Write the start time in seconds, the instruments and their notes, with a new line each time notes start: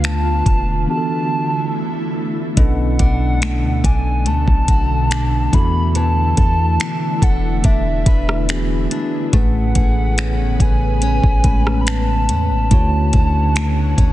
Already playing: 808-style bass D2, tine electric piano D3 A3 D4 F4 B4, ambient pad D3 B3 F4
0.04 soft synth lead A5, finger snap, closed hi-hat
0.46 808-style bass E1, kick, closed hi-hat
0.87 tine electric piano E3 B3 D4 F#4 G#4, ambient pad A3 E4, soft synth lead A5
0.97 tine electric piano A4
2.56 808-style bass B1, tine electric piano B2 B3 C#4 D4 A4, steel-string acoustic guitar B2, ambient pad B2 D3 A3, soft synth lead F#5, kick, closed hi-hat
2.99 808-style bass B1, steel-string acoustic guitar D4, kick, closed hi-hat
3.42 steel-string acoustic guitar A3, finger snap, closed hi-hat
3.63 808-style bass D2
3.84 808-style bass B1, steel-string acoustic guitar D4, soft synth lead G#5, kick, closed hi-hat
4.26 808-style bass D2, steel-string acoustic guitar A3, soft synth lead A5, closed hi-hat
4.48 808-style bass B1, kick
4.68 steel-string acoustic guitar F#4, kick, closed hi-hat
5.11 steel-string acoustic guitar D4, finger snap, closed hi-hat
5.52 808-style bass E2, ambient pad D3 E4, tine electric piano E3 B3 D4 F#4 A4, steel-string acoustic guitar E3, soft synth lead B5, kick, closed hi-hat
5.95 steel-string acoustic guitar E3, soft synth lead A5, closed hi-hat
6.37 808-style bass E2, steel-string acoustic guitar A4, kick, closed hi-hat
6.80 steel-string acoustic guitar D4, finger snap, closed hi-hat
7.22 808-style bass E1, steel-string acoustic guitar A4, soft synth lead F#5, kick, closed hi-hat
7.64 808-style bass E1, steel-string acoustic guitar D4, soft synth lead E5, kick, closed hi-hat
8.06 808-style bass E1, steel-string acoustic guitar B4, kick, closed hi-hat
8.29 cross-stick
8.48 tine electric piano E3 B3 D4 F#4 G#4, steel-string acoustic guitar E3, ambient pad G#3, finger snap, closed hi-hat
8.91 steel-string acoustic guitar D4, closed hi-hat
9.32 808-style bass A1, tine electric piano A2 A3 C#4 G#4 B4, ambient pad C#3 B3 B4, steel-string acoustic guitar A3, soft synth lead F#5, kick, closed hi-hat
9.75 808-style bass A1, steel-string acoustic guitar G#4, kick, closed hi-hat
10.18 steel-string acoustic guitar C#4, finger snap, closed hi-hat
10.39 808-style bass G#1
10.60 808-style bass A1, steel-string acoustic guitar G#4, soft synth lead G#5, kick, closed hi-hat
11.02 steel-string acoustic guitar C#4, closed hi-hat
11.24 808-style bass A1, kick
11.44 808-style bass A1, tine electric piano A2 G#3 A3 C#4 B4, steel-string acoustic guitar B4, kick, closed hi-hat
11.67 cross-stick
11.81 soft synth lead B5
11.87 soft synth lead A5, finger snap, closed hi-hat
12.29 808-style bass E2, steel-string acoustic guitar C#4, closed hi-hat
12.50 808-style bass A1, soft synth lead A5
12.70 808-style bass D2, tine electric piano D3 A3 E4 F#4 C#5, ambient pad D3 C#4 F#4, steel-string acoustic guitar D3, kick, closed hi-hat
13.13 808-style bass D2, steel-string acoustic guitar C#4, kick, closed hi-hat
13.56 steel-string acoustic guitar A3, finger snap, closed hi-hat
13.98 808-style bass D2, steel-string acoustic guitar C#4, kick, closed hi-hat